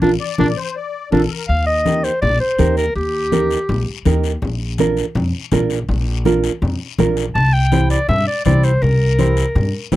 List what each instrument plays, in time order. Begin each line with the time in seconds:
0.02 upright bass A#1, nylon-string guitar D4 F4 A#4, clarinet D4, high conga, long guiro
0.20 accordion D5
0.38 upright bass A#1, nylon-string guitar D4 F4 A#4, clarinet D4, high conga
0.57 accordion C5
0.76 accordion D5
1.12 upright bass A#1, clarinet D4, nylon-string guitar D4 F4 A#4, accordion A4, high conga, long guiro
1.30 accordion A#4
1.49 upright bass D#2, clarinet F5, high conga, long guiro
1.66 clarinet D#5
1.85 nylon-string guitar D#4 G4 A#4, high conga, short guiro
2.04 clarinet C5, short guiro
2.21 upright bass A#1, clarinet D5, high conga, low conga, long guiro
2.40 clarinet C5
2.58 upright bass D#2, nylon-string guitar D#4 G4 A#4, high conga, short guiro
2.77 clarinet A#4, short guiro
2.95 upright bass D#2, clarinet G4, high conga, long guiro
3.32 nylon-string guitar D#4 G4 A#4, high conga, short guiro
3.50 short guiro
3.69 upright bass A#1, high conga, low conga, long guiro
4.05 upright bass D#2, nylon-string guitar D#4 G4 A#4, high conga, short guiro
4.24 short guiro
4.42 upright bass A#1, high conga, low conga, long guiro
4.78 nylon-string guitar D4 F4 A#4, high conga, short guiro
4.97 short guiro
5.15 upright bass F2, high conga, low conga, long guiro
5.52 upright bass A#1, nylon-string guitar D4 F4 A#4, high conga, low conga, short guiro
5.70 short guiro
5.89 upright bass A#1, high conga, low conga, long guiro
6.25 nylon-string guitar D4 F4 A#4, high conga, short guiro
6.44 short guiro
6.62 upright bass F2, high conga, low conga, long guiro
6.98 upright bass A#1, nylon-string guitar D4 F4 A#4, high conga, low conga, short guiro
7.17 short guiro
7.35 upright bass C2, clarinet A5, high conga, low conga, long guiro
7.53 clarinet G5
7.72 nylon-string guitar E4 G4 C5, high conga, short guiro
7.90 clarinet D5, short guiro
8.08 upright bass G2, clarinet E5, high conga, low conga, long guiro
8.27 clarinet D5
8.45 upright bass C2, nylon-string guitar E4 G4 C5, clarinet D5, high conga, low conga, short guiro
8.63 clarinet C5, short guiro
8.82 upright bass C2, clarinet A#4, high conga, low conga, long guiro
9.18 nylon-string guitar E4 G4 C5, high conga, short guiro
9.37 short guiro
9.55 upright bass G2, high conga, low conga, long guiro
9.92 upright bass C2, nylon-string guitar E4 G4 C5, high conga, low conga, short guiro